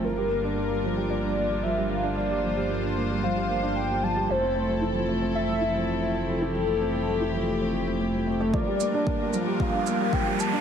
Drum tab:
SH |--------|--------|--------|--------|
BD |--------|--------|--------|--------|

SH |-x-x-x-x|
BD |o-o-o-o-|